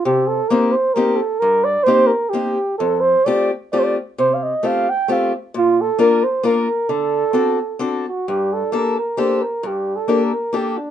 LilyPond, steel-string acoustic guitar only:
\new Staff \with { instrumentName = "Steel-string acoustic guitar" } { \time 3/4 \key d \phrygian \tempo 4 = 132 c4 <bes c' ees' g'>8 r8 <bes c' ees' g'>8 r8 | g,4 <bes c' ees' g'>8 r8 <bes c' ees' g'>8 r8 | f,4 <a c' f' g'>8 r8 <a c' f' g'>8 r8 | c4 <a c' f' g'>8 r8 <a c' f' g'>8 r8 |
bes,4 <bes d' f' bes'>8 r8 <bes d' f' bes'>8 r8 | d4 <c' d' fis' a'>8 r8 <c' d' fis' a'>8 r8 | \key g \minor g,4 <bes d' g' a'>8 r8 <bes d' g' a'>8 r8 | g,4 <bes d' g' a'>8 r8 <bes d' g' a'>8 r8 | }